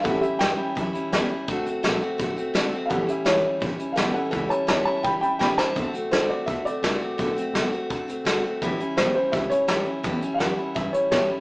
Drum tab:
HH |xxx-xxx-|xxx-xxx-|xxx-xxx-|xxx-xx--|
SD |--o---o-|--o---o-|--o---o-|--o---oo|
BD |o---o---|o---o---|o---o---|o---o---|

HH |xxx-xxx-|xxx-xxx-|xxx-xxx-|xxx-xxx-|
SD |--o---o-|--o---o-|--o---o-|--o---o-|
BD |o---o---|o---o---|o---o---|o---o---|